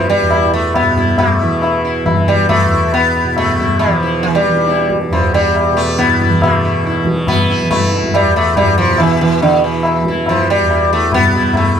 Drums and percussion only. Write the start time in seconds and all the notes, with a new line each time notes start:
0.07 tabla te
0.19 tabla ge
0.30 tabla na
0.74 tabla na, tabla ge
0.96 tabla ge
1.18 tabla na, tabla ge
1.62 tabla na
2.06 tabla na, tabla ge
2.27 tabla ge
2.49 tabla na, tabla ge
2.92 tabla na
3.36 tabla na, tabla ge
3.59 tabla ge
3.80 tabla na
4.24 tabla te
4.35 tabla te
4.46 tabla ke
4.57 tabla te
4.67 tabla te
4.79 tabla te
4.90 tabla ke
5.01 tabla te
5.12 tabla na, tabla ge
5.55 tabla na
5.98 tabla na, tabla ge
6.20 tabla ge
6.42 tabla na, tabla ge
6.84 tabla te
6.95 tabla te
7.05 tabla ke
7.16 tabla te
7.27 tabla na, tabla ge
7.49 tabla ge
7.71 tabla na, tabla ge
7.92 tabla te
8.03 tabla ge
8.14 tabla na
8.36 tabla na
8.56 tabla na, tabla ge
8.78 tabla ge
8.98 tabla na
9.41 tabla na
9.83 tabla na
10.05 tabla ke
10.26 tabla na, tabla ge
10.69 tabla na
11.12 tabla na, tabla ge
11.33 tabla ge
11.54 tabla na, tabla ge